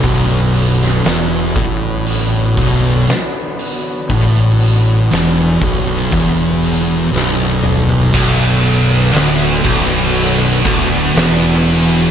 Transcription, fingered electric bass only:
X:1
M:4/4
L:1/8
Q:1/4=59
K:Bm
V:1 name="Fingered electric bass" clef=bass
B,,,,2 E,,, A,,,2 B,,,, z2 | A,,,2 E,,, B,,,, E,,,2 B,,,,2 | B,,,,2 D,,, B,,,,2 D,,, E,,,2 |]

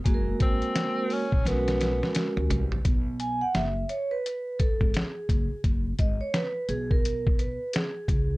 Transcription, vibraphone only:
X:1
M:4/4
L:1/16
Q:"Swing 16ths" 1/4=86
K:F#
V:1 name="Vibraphone"
[G,A,FGA]6 z2 [G,CFA]6 z2 | [K:F#mix] z2 g f e2 c B3 =A2 G4 | z2 d c B2 G A3 B2 G4 |]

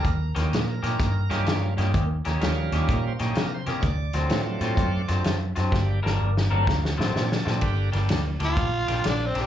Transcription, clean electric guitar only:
X:1
M:4/4
L:1/8
Q:"Swing" 1/4=127
K:Gm
V:1 name="Clean electric guitar"
z [E,B,_DG] z [E,B,DG] z [E,B,DG] z [E,B,DG] | z [E,B,_DG] z [E,B,DG] z [E,B,DG] z [E,B,DG] | z [D,^F,C^E] z [D,F,CE] z [D,F,CE] z [D,F,CE] | z [G,B,DB] z [G,B,DB] z [D,^F,C^E] z [D,F,CE] |
z [G,B,DG] z [G,B,DG] z [G,B,DG] z [G,B,DG] |]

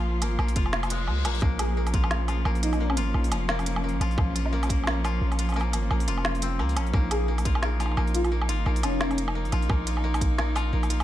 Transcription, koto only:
X:1
M:4/4
L:1/8
Q:"Swing 16ths" 1/4=174
K:Bbm
V:1 name="Koto"
F B, B, F2 A, z B, | B, B, B, F2 F B, B, | B, F2 F B, B, B, F- | F F B, B, B, F2 F |
B, B, B, F2 C B, D | B, z B, F B, F B, z | B, F B, F B, z B, F | B, F B, z B, F B, F |]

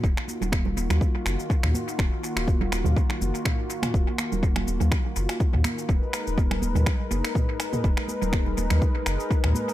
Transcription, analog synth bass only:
X:1
M:4/4
L:1/16
Q:"Swing 16ths" 1/4=123
K:Ebm
V:1 name="Analog synth bass" clef=bass
E,,, z2 E,,,3 E,,, E,, z2 G,,, z2 E,, z2 | E,,, z2 E,,,3 E,,, E,, z2 G,,, z4 z | E,,, z2 E,,,3 E,,, E,, z2 G,,, z2 E,, z2 | E,,, z2 E,,,3 E,,, E,, z2 G,,, z4 z |
E,,, z2 E,,,3 E,,, E,, z2 G,,, z2 E,, z2 |]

